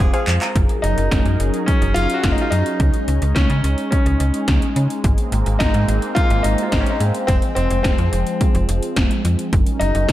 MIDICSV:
0, 0, Header, 1, 7, 480
1, 0, Start_track
1, 0, Tempo, 560748
1, 476, Time_signature, 4, 2, 24, 8
1, 8664, End_track
2, 0, Start_track
2, 0, Title_t, "Synth pluck"
2, 0, Program_c, 0, 84
2, 116, Note_on_c, 0, 68, 85
2, 116, Note_on_c, 0, 72, 78
2, 116, Note_on_c, 0, 77, 96
2, 371, Note_off_c, 0, 68, 0
2, 371, Note_off_c, 0, 72, 0
2, 371, Note_off_c, 0, 77, 0
2, 8664, End_track
3, 0, Start_track
3, 0, Title_t, "Five-string banjo"
3, 0, Program_c, 1, 105
3, 0, Note_on_c, 1, 68, 81
3, 102, Note_off_c, 1, 68, 0
3, 116, Note_on_c, 1, 68, 72
3, 328, Note_off_c, 1, 68, 0
3, 356, Note_on_c, 1, 70, 72
3, 462, Note_off_c, 1, 70, 0
3, 8664, End_track
4, 0, Start_track
4, 0, Title_t, "Grand piano"
4, 0, Program_c, 2, 0
4, 704, Note_on_c, 2, 63, 96
4, 1424, Note_on_c, 2, 61, 88
4, 1452, Note_off_c, 2, 63, 0
4, 1653, Note_off_c, 2, 61, 0
4, 1664, Note_on_c, 2, 65, 120
4, 1832, Note_on_c, 2, 66, 89
4, 1843, Note_off_c, 2, 65, 0
4, 1909, Note_on_c, 2, 65, 91
4, 1916, Note_off_c, 2, 66, 0
4, 1987, Note_on_c, 2, 63, 88
4, 1993, Note_off_c, 2, 65, 0
4, 2066, Note_on_c, 2, 65, 90
4, 2072, Note_off_c, 2, 63, 0
4, 2144, Note_on_c, 2, 63, 100
4, 2150, Note_off_c, 2, 65, 0
4, 2836, Note_off_c, 2, 63, 0
4, 2865, Note_on_c, 2, 61, 88
4, 3331, Note_off_c, 2, 61, 0
4, 3343, Note_on_c, 2, 61, 76
4, 4035, Note_off_c, 2, 61, 0
4, 4784, Note_on_c, 2, 63, 91
4, 5263, Note_on_c, 2, 65, 106
4, 5284, Note_off_c, 2, 63, 0
4, 5503, Note_on_c, 2, 63, 91
4, 5517, Note_off_c, 2, 65, 0
4, 5666, Note_off_c, 2, 63, 0
4, 5672, Note_on_c, 2, 65, 76
4, 5750, Note_on_c, 2, 63, 75
4, 5756, Note_off_c, 2, 65, 0
4, 5827, Note_on_c, 2, 61, 76
4, 5834, Note_off_c, 2, 63, 0
4, 5905, Note_on_c, 2, 63, 75
4, 5912, Note_off_c, 2, 61, 0
4, 5989, Note_off_c, 2, 63, 0
4, 6224, Note_on_c, 2, 60, 107
4, 6279, Note_off_c, 2, 60, 0
4, 6464, Note_on_c, 2, 60, 97
4, 6689, Note_off_c, 2, 60, 0
4, 6702, Note_on_c, 2, 60, 87
4, 7875, Note_off_c, 2, 60, 0
4, 8385, Note_on_c, 2, 63, 95
4, 8664, Note_off_c, 2, 63, 0
4, 8664, End_track
5, 0, Start_track
5, 0, Title_t, "Analog synth pad"
5, 0, Program_c, 3, 89
5, 0, Note_on_c, 3, 56, 83
5, 0, Note_on_c, 3, 60, 74
5, 0, Note_on_c, 3, 65, 89
5, 441, Note_off_c, 3, 56, 0
5, 441, Note_off_c, 3, 65, 0
5, 442, Note_off_c, 3, 60, 0
5, 476, Note_on_c, 3, 54, 80
5, 476, Note_on_c, 3, 61, 73
5, 476, Note_on_c, 3, 63, 75
5, 476, Note_on_c, 3, 68, 74
5, 476, Note_on_c, 3, 70, 90
5, 2377, Note_off_c, 3, 54, 0
5, 2377, Note_off_c, 3, 68, 0
5, 2377, Note_off_c, 3, 70, 0
5, 2396, Note_on_c, 3, 56, 79
5, 4282, Note_off_c, 3, 61, 0
5, 4282, Note_off_c, 3, 63, 0
5, 4316, Note_on_c, 3, 58, 74
5, 4316, Note_on_c, 3, 60, 88
5, 6217, Note_off_c, 3, 58, 0
5, 6236, Note_on_c, 3, 53, 80
5, 8122, Note_off_c, 3, 56, 0
5, 8122, Note_off_c, 3, 60, 0
5, 8137, Note_off_c, 3, 53, 0
5, 8157, Note_on_c, 3, 54, 78
5, 8157, Note_on_c, 3, 63, 73
5, 8157, Note_on_c, 3, 68, 74
5, 8157, Note_on_c, 3, 70, 89
5, 8158, Note_on_c, 3, 61, 75
5, 8664, Note_off_c, 3, 54, 0
5, 8664, Note_off_c, 3, 61, 0
5, 8664, Note_off_c, 3, 63, 0
5, 8664, Note_off_c, 3, 68, 0
5, 8664, Note_off_c, 3, 70, 0
5, 8664, End_track
6, 0, Start_track
6, 0, Title_t, "FM bass"
6, 0, Program_c, 4, 39
6, 0, Note_on_c, 4, 29, 99
6, 95, Note_off_c, 4, 29, 0
6, 235, Note_on_c, 4, 41, 97
6, 334, Note_off_c, 4, 41, 0
6, 476, Note_on_c, 4, 30, 121
6, 574, Note_off_c, 4, 30, 0
6, 715, Note_on_c, 4, 30, 95
6, 814, Note_off_c, 4, 30, 0
6, 835, Note_on_c, 4, 30, 98
6, 934, Note_off_c, 4, 30, 0
6, 956, Note_on_c, 4, 30, 97
6, 1054, Note_off_c, 4, 30, 0
6, 1076, Note_on_c, 4, 42, 85
6, 1174, Note_off_c, 4, 42, 0
6, 1195, Note_on_c, 4, 30, 95
6, 1294, Note_off_c, 4, 30, 0
6, 1556, Note_on_c, 4, 30, 94
6, 1654, Note_off_c, 4, 30, 0
6, 1675, Note_on_c, 4, 30, 95
6, 1773, Note_off_c, 4, 30, 0
6, 1918, Note_on_c, 4, 30, 104
6, 2015, Note_off_c, 4, 30, 0
6, 2156, Note_on_c, 4, 42, 99
6, 2254, Note_off_c, 4, 42, 0
6, 2396, Note_on_c, 4, 37, 115
6, 2494, Note_off_c, 4, 37, 0
6, 2636, Note_on_c, 4, 37, 98
6, 2734, Note_off_c, 4, 37, 0
6, 2756, Note_on_c, 4, 37, 105
6, 2854, Note_off_c, 4, 37, 0
6, 2876, Note_on_c, 4, 37, 106
6, 2974, Note_off_c, 4, 37, 0
6, 2996, Note_on_c, 4, 49, 100
6, 3094, Note_off_c, 4, 49, 0
6, 3116, Note_on_c, 4, 37, 92
6, 3214, Note_off_c, 4, 37, 0
6, 3476, Note_on_c, 4, 37, 95
6, 3574, Note_off_c, 4, 37, 0
6, 3597, Note_on_c, 4, 37, 99
6, 3694, Note_off_c, 4, 37, 0
6, 3838, Note_on_c, 4, 37, 99
6, 3935, Note_off_c, 4, 37, 0
6, 4076, Note_on_c, 4, 49, 98
6, 4174, Note_off_c, 4, 49, 0
6, 4316, Note_on_c, 4, 32, 113
6, 4414, Note_off_c, 4, 32, 0
6, 4556, Note_on_c, 4, 32, 109
6, 4654, Note_off_c, 4, 32, 0
6, 4676, Note_on_c, 4, 32, 98
6, 4774, Note_off_c, 4, 32, 0
6, 4796, Note_on_c, 4, 32, 101
6, 4894, Note_off_c, 4, 32, 0
6, 4916, Note_on_c, 4, 44, 99
6, 5014, Note_off_c, 4, 44, 0
6, 5036, Note_on_c, 4, 32, 102
6, 5134, Note_off_c, 4, 32, 0
6, 5396, Note_on_c, 4, 32, 102
6, 5494, Note_off_c, 4, 32, 0
6, 5516, Note_on_c, 4, 32, 97
6, 5614, Note_off_c, 4, 32, 0
6, 5758, Note_on_c, 4, 32, 96
6, 5855, Note_off_c, 4, 32, 0
6, 5996, Note_on_c, 4, 44, 94
6, 6094, Note_off_c, 4, 44, 0
6, 6236, Note_on_c, 4, 29, 112
6, 6334, Note_off_c, 4, 29, 0
6, 6476, Note_on_c, 4, 29, 101
6, 6574, Note_off_c, 4, 29, 0
6, 6596, Note_on_c, 4, 29, 100
6, 6694, Note_off_c, 4, 29, 0
6, 6716, Note_on_c, 4, 29, 101
6, 6814, Note_off_c, 4, 29, 0
6, 6835, Note_on_c, 4, 41, 99
6, 6934, Note_off_c, 4, 41, 0
6, 6955, Note_on_c, 4, 29, 95
6, 7054, Note_off_c, 4, 29, 0
6, 7316, Note_on_c, 4, 29, 97
6, 7414, Note_off_c, 4, 29, 0
6, 7436, Note_on_c, 4, 29, 99
6, 7534, Note_off_c, 4, 29, 0
6, 7678, Note_on_c, 4, 29, 100
6, 7775, Note_off_c, 4, 29, 0
6, 7916, Note_on_c, 4, 41, 99
6, 8014, Note_off_c, 4, 41, 0
6, 8156, Note_on_c, 4, 30, 119
6, 8254, Note_off_c, 4, 30, 0
6, 8396, Note_on_c, 4, 30, 99
6, 8494, Note_off_c, 4, 30, 0
6, 8516, Note_on_c, 4, 30, 98
6, 8614, Note_off_c, 4, 30, 0
6, 8637, Note_on_c, 4, 30, 98
6, 8664, Note_off_c, 4, 30, 0
6, 8664, End_track
7, 0, Start_track
7, 0, Title_t, "Drums"
7, 0, Note_on_c, 9, 36, 114
7, 84, Note_off_c, 9, 36, 0
7, 117, Note_on_c, 9, 42, 59
7, 202, Note_off_c, 9, 42, 0
7, 236, Note_on_c, 9, 39, 102
7, 237, Note_on_c, 9, 42, 70
7, 322, Note_off_c, 9, 39, 0
7, 322, Note_off_c, 9, 42, 0
7, 356, Note_on_c, 9, 39, 88
7, 357, Note_on_c, 9, 42, 55
7, 442, Note_off_c, 9, 39, 0
7, 443, Note_off_c, 9, 42, 0
7, 476, Note_on_c, 9, 36, 114
7, 476, Note_on_c, 9, 42, 83
7, 561, Note_off_c, 9, 36, 0
7, 561, Note_off_c, 9, 42, 0
7, 593, Note_on_c, 9, 42, 55
7, 679, Note_off_c, 9, 42, 0
7, 717, Note_on_c, 9, 42, 66
7, 802, Note_off_c, 9, 42, 0
7, 836, Note_on_c, 9, 42, 55
7, 922, Note_off_c, 9, 42, 0
7, 954, Note_on_c, 9, 38, 101
7, 956, Note_on_c, 9, 36, 101
7, 959, Note_on_c, 9, 42, 68
7, 1040, Note_off_c, 9, 38, 0
7, 1042, Note_off_c, 9, 36, 0
7, 1044, Note_off_c, 9, 42, 0
7, 1074, Note_on_c, 9, 42, 47
7, 1160, Note_off_c, 9, 42, 0
7, 1198, Note_on_c, 9, 42, 69
7, 1283, Note_off_c, 9, 42, 0
7, 1315, Note_on_c, 9, 42, 50
7, 1401, Note_off_c, 9, 42, 0
7, 1437, Note_on_c, 9, 36, 109
7, 1437, Note_on_c, 9, 42, 80
7, 1522, Note_off_c, 9, 42, 0
7, 1523, Note_off_c, 9, 36, 0
7, 1557, Note_on_c, 9, 42, 48
7, 1642, Note_off_c, 9, 42, 0
7, 1676, Note_on_c, 9, 42, 88
7, 1762, Note_off_c, 9, 42, 0
7, 1794, Note_on_c, 9, 42, 60
7, 1880, Note_off_c, 9, 42, 0
7, 1913, Note_on_c, 9, 42, 75
7, 1914, Note_on_c, 9, 38, 115
7, 1918, Note_on_c, 9, 36, 108
7, 1999, Note_off_c, 9, 38, 0
7, 1999, Note_off_c, 9, 42, 0
7, 2003, Note_off_c, 9, 36, 0
7, 2037, Note_on_c, 9, 42, 57
7, 2122, Note_off_c, 9, 42, 0
7, 2156, Note_on_c, 9, 42, 69
7, 2242, Note_off_c, 9, 42, 0
7, 2277, Note_on_c, 9, 42, 58
7, 2362, Note_off_c, 9, 42, 0
7, 2396, Note_on_c, 9, 36, 116
7, 2396, Note_on_c, 9, 42, 82
7, 2481, Note_off_c, 9, 36, 0
7, 2481, Note_off_c, 9, 42, 0
7, 2513, Note_on_c, 9, 42, 56
7, 2598, Note_off_c, 9, 42, 0
7, 2636, Note_on_c, 9, 42, 64
7, 2721, Note_off_c, 9, 42, 0
7, 2755, Note_on_c, 9, 42, 57
7, 2841, Note_off_c, 9, 42, 0
7, 2873, Note_on_c, 9, 38, 103
7, 2876, Note_on_c, 9, 36, 101
7, 2878, Note_on_c, 9, 42, 72
7, 2959, Note_off_c, 9, 38, 0
7, 2962, Note_off_c, 9, 36, 0
7, 2963, Note_off_c, 9, 42, 0
7, 2993, Note_on_c, 9, 42, 46
7, 3079, Note_off_c, 9, 42, 0
7, 3117, Note_on_c, 9, 42, 70
7, 3202, Note_off_c, 9, 42, 0
7, 3234, Note_on_c, 9, 42, 51
7, 3320, Note_off_c, 9, 42, 0
7, 3356, Note_on_c, 9, 42, 84
7, 3357, Note_on_c, 9, 36, 108
7, 3442, Note_off_c, 9, 42, 0
7, 3443, Note_off_c, 9, 36, 0
7, 3476, Note_on_c, 9, 42, 50
7, 3562, Note_off_c, 9, 42, 0
7, 3596, Note_on_c, 9, 42, 85
7, 3682, Note_off_c, 9, 42, 0
7, 3714, Note_on_c, 9, 42, 63
7, 3800, Note_off_c, 9, 42, 0
7, 3833, Note_on_c, 9, 38, 114
7, 3833, Note_on_c, 9, 42, 77
7, 3838, Note_on_c, 9, 36, 110
7, 3919, Note_off_c, 9, 38, 0
7, 3919, Note_off_c, 9, 42, 0
7, 3923, Note_off_c, 9, 36, 0
7, 3956, Note_on_c, 9, 42, 57
7, 4042, Note_off_c, 9, 42, 0
7, 4076, Note_on_c, 9, 42, 71
7, 4162, Note_off_c, 9, 42, 0
7, 4197, Note_on_c, 9, 42, 57
7, 4282, Note_off_c, 9, 42, 0
7, 4315, Note_on_c, 9, 42, 83
7, 4316, Note_on_c, 9, 36, 116
7, 4401, Note_off_c, 9, 36, 0
7, 4401, Note_off_c, 9, 42, 0
7, 4433, Note_on_c, 9, 42, 56
7, 4518, Note_off_c, 9, 42, 0
7, 4556, Note_on_c, 9, 42, 64
7, 4641, Note_off_c, 9, 42, 0
7, 4676, Note_on_c, 9, 42, 59
7, 4762, Note_off_c, 9, 42, 0
7, 4794, Note_on_c, 9, 38, 107
7, 4796, Note_on_c, 9, 36, 99
7, 4798, Note_on_c, 9, 42, 69
7, 4880, Note_off_c, 9, 38, 0
7, 4882, Note_off_c, 9, 36, 0
7, 4884, Note_off_c, 9, 42, 0
7, 4914, Note_on_c, 9, 42, 48
7, 5000, Note_off_c, 9, 42, 0
7, 5037, Note_on_c, 9, 42, 69
7, 5123, Note_off_c, 9, 42, 0
7, 5156, Note_on_c, 9, 42, 52
7, 5241, Note_off_c, 9, 42, 0
7, 5277, Note_on_c, 9, 36, 106
7, 5277, Note_on_c, 9, 42, 82
7, 5362, Note_off_c, 9, 42, 0
7, 5363, Note_off_c, 9, 36, 0
7, 5396, Note_on_c, 9, 42, 50
7, 5482, Note_off_c, 9, 42, 0
7, 5515, Note_on_c, 9, 42, 88
7, 5601, Note_off_c, 9, 42, 0
7, 5634, Note_on_c, 9, 42, 59
7, 5720, Note_off_c, 9, 42, 0
7, 5753, Note_on_c, 9, 42, 76
7, 5754, Note_on_c, 9, 38, 112
7, 5758, Note_on_c, 9, 36, 108
7, 5839, Note_off_c, 9, 38, 0
7, 5839, Note_off_c, 9, 42, 0
7, 5844, Note_off_c, 9, 36, 0
7, 5876, Note_on_c, 9, 42, 55
7, 5962, Note_off_c, 9, 42, 0
7, 5996, Note_on_c, 9, 42, 73
7, 6081, Note_off_c, 9, 42, 0
7, 6116, Note_on_c, 9, 42, 57
7, 6202, Note_off_c, 9, 42, 0
7, 6235, Note_on_c, 9, 42, 83
7, 6236, Note_on_c, 9, 36, 116
7, 6321, Note_off_c, 9, 36, 0
7, 6321, Note_off_c, 9, 42, 0
7, 6353, Note_on_c, 9, 42, 57
7, 6439, Note_off_c, 9, 42, 0
7, 6476, Note_on_c, 9, 42, 66
7, 6561, Note_off_c, 9, 42, 0
7, 6596, Note_on_c, 9, 42, 59
7, 6681, Note_off_c, 9, 42, 0
7, 6714, Note_on_c, 9, 38, 101
7, 6717, Note_on_c, 9, 36, 99
7, 6719, Note_on_c, 9, 42, 72
7, 6800, Note_off_c, 9, 38, 0
7, 6802, Note_off_c, 9, 36, 0
7, 6804, Note_off_c, 9, 42, 0
7, 6834, Note_on_c, 9, 42, 47
7, 6920, Note_off_c, 9, 42, 0
7, 6957, Note_on_c, 9, 42, 72
7, 7043, Note_off_c, 9, 42, 0
7, 7075, Note_on_c, 9, 42, 49
7, 7161, Note_off_c, 9, 42, 0
7, 7197, Note_on_c, 9, 36, 110
7, 7197, Note_on_c, 9, 42, 79
7, 7283, Note_off_c, 9, 36, 0
7, 7283, Note_off_c, 9, 42, 0
7, 7316, Note_on_c, 9, 42, 48
7, 7402, Note_off_c, 9, 42, 0
7, 7437, Note_on_c, 9, 42, 90
7, 7522, Note_off_c, 9, 42, 0
7, 7555, Note_on_c, 9, 42, 61
7, 7641, Note_off_c, 9, 42, 0
7, 7674, Note_on_c, 9, 38, 115
7, 7674, Note_on_c, 9, 42, 74
7, 7678, Note_on_c, 9, 36, 111
7, 7759, Note_off_c, 9, 42, 0
7, 7760, Note_off_c, 9, 38, 0
7, 7764, Note_off_c, 9, 36, 0
7, 7796, Note_on_c, 9, 42, 56
7, 7882, Note_off_c, 9, 42, 0
7, 7916, Note_on_c, 9, 42, 72
7, 8002, Note_off_c, 9, 42, 0
7, 8037, Note_on_c, 9, 42, 57
7, 8122, Note_off_c, 9, 42, 0
7, 8156, Note_on_c, 9, 36, 116
7, 8156, Note_on_c, 9, 42, 84
7, 8241, Note_off_c, 9, 42, 0
7, 8242, Note_off_c, 9, 36, 0
7, 8273, Note_on_c, 9, 42, 57
7, 8359, Note_off_c, 9, 42, 0
7, 8396, Note_on_c, 9, 42, 67
7, 8481, Note_off_c, 9, 42, 0
7, 8516, Note_on_c, 9, 42, 58
7, 8602, Note_off_c, 9, 42, 0
7, 8633, Note_on_c, 9, 38, 101
7, 8636, Note_on_c, 9, 36, 98
7, 8638, Note_on_c, 9, 42, 71
7, 8664, Note_off_c, 9, 36, 0
7, 8664, Note_off_c, 9, 38, 0
7, 8664, Note_off_c, 9, 42, 0
7, 8664, End_track
0, 0, End_of_file